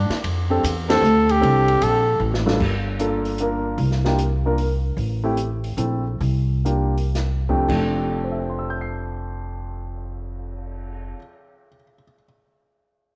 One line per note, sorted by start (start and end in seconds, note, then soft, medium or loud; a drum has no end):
0.00 0.23 D4 medium
0.09 muted upright bass stroke soft
0.09 snare soft
0.09 ride soft
0.24 0.62 F2 medium
0.24 kick soft
0.24 ride medium
0.50 0.62 C4 medium
0.50 0.62 D4 medium
0.50 0.62 G4 medium
0.50 0.63 A4 medium
0.63 1.01 E2 medium
0.63 kick soft
0.63 hi-hat pedal medium
0.63 ride medium
0.89 1.01 C4 medium
0.89 1.01 D4 medium
0.89 1.02 G4 medium
0.89 1.32 A4 medium
0.89 1.02 C5 medium
0.89 snare medium
0.89 ride medium
1.01 1.40 D2 medium
1.01 hi-hat pedal soft
1.29 1.85 G4 medium
1.29 ride soft
1.41 1.80 C2 medium
1.41 2.01 C4 medium
1.41 2.01 D4 medium
1.41 2.02 G4 medium
1.41 2.02 A4 medium
1.41 kick soft
1.41 ride medium
1.68 ride soft
1.82 2.19 A#1 medium
1.82 2.22 A4 medium
1.82 kick soft
1.82 hi-hat pedal medium
1.82 ride medium
2.20 2.59 A1 medium
2.34 snare medium
2.46 2.59 G2 medium
2.46 2.59 A#3 medium
2.46 2.59 D4 medium
2.46 2.59 F4 medium
2.46 2.59 A4 medium
2.46 snare medium
2.60 3.74 G1 medium
2.60 kick medium
2.60 crash medium
2.99 3.38 A#3 medium
2.99 3.38 D4 medium
2.99 3.38 F4 medium
2.99 3.38 A4 medium
2.99 closed hi-hat medium
3.25 open hi-hat soft
3.38 3.79 A#3 medium
3.38 3.79 D4 soft
3.38 3.80 F4 medium
3.38 3.80 A#4 medium
3.38 closed hi-hat medium
3.78 4.93 C2 medium
3.78 kick soft
3.78 open hi-hat soft
3.91 snare soft
4.05 4.17 A#3 medium
4.05 4.18 D4 medium
4.05 4.17 F4 medium
4.05 4.18 G4 medium
4.05 snare soft
4.19 closed hi-hat soft
4.46 4.57 A#3 medium
4.46 4.57 D4 medium
4.46 4.57 F4 medium
4.46 4.58 A#4 medium
4.58 open hi-hat soft
4.97 5.74 A1 medium
4.97 kick soft
4.97 open hi-hat soft
5.24 5.36 A3 medium
5.24 5.36 C4 soft
5.24 5.36 E4 medium
5.24 5.37 G4 medium
5.37 closed hi-hat medium
5.64 open hi-hat soft
5.77 6.17 A#1 medium
5.77 6.03 A3 soft
5.77 6.03 C4 soft
5.77 6.03 E4 soft
5.77 6.03 A4 medium
5.77 closed hi-hat medium
6.20 7.64 C2 medium
6.20 kick soft
6.20 open hi-hat soft
6.65 6.94 A#3 medium
6.65 6.94 D4 soft
6.65 6.94 F4 soft
6.65 6.94 G4 medium
6.65 closed hi-hat soft
6.98 open hi-hat soft
7.15 snare soft
7.15 closed hi-hat soft
7.49 7.66 F2 medium
7.49 7.67 A3 medium
7.49 7.67 C4 medium
7.49 7.67 D4 soft
7.49 7.67 G4 medium
7.49 kick soft
7.68 11.12 F1 medium
7.68 11.15 F2 medium
7.68 11.15 F3 medium
7.68 11.16 A3 medium
7.68 11.16 D4 medium
7.68 11.18 G4 medium
7.68 kick soft
7.68 crash medium
8.06 cymbal swell soft
8.24 11.67 C5 soft
8.31 11.75 E5 soft
8.40 11.83 G5 soft
8.50 11.93 C6 soft
8.59 12.02 E6 soft
8.70 12.13 G6 soft
8.81 12.24 C7 soft